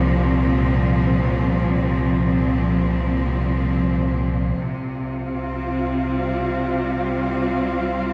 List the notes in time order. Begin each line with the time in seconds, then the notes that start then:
Already playing: C2 A#2 C3 F3 C4
4.58 C2 C3 F4
4.62 F5
5.26 C4
5.84 G3